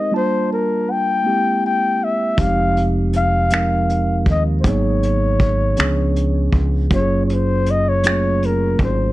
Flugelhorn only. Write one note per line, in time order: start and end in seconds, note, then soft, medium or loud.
0.00 0.14 D#5 loud
0.16 0.49 C5 medium
0.53 0.93 A#4 medium
0.91 1.65 G5 loud
1.66 2.05 G5 medium
2.04 2.43 E5 medium
2.41 2.88 F5 medium
3.16 4.24 F5 medium
4.30 4.43 D#5 medium
4.61 4.70 C5 medium
4.68 6.55 C#5 medium
6.95 7.22 C#5 loud
7.26 7.34 C#5 medium
7.33 7.72 C5 loud
7.71 7.91 D#5 medium
7.89 8.47 C#5 medium
8.46 8.82 A#4 medium
8.83 9.12 C5 medium